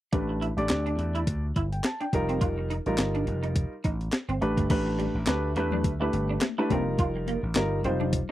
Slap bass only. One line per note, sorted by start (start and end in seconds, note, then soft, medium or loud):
0.13 0.50 A1 medium
0.57 0.68 A1 medium
0.70 0.94 D2 medium
0.99 1.22 E2 medium
1.27 1.51 D2 medium
1.56 1.79 G1 medium
2.13 2.36 F1 medium
2.41 2.78 F1 loud
2.86 2.97 A1 medium
2.99 3.22 G1 medium
3.27 3.64 F1 medium
3.85 4.08 A1 loud
4.28 4.39 G1 medium
4.41 4.54 A1 medium
4.57 4.68 G1 medium
4.70 5.07 A1 loud
5.15 5.25 A1 medium
5.27 5.56 D2 medium
5.56 5.84 E2 medium
5.84 6.08 D2 loud
6.13 6.37 G1 medium
6.70 6.94 F1 medium
6.99 7.35 F1 loud
7.43 7.53 A1 medium
7.56 7.79 G1 medium
7.84 8.21 F1 medium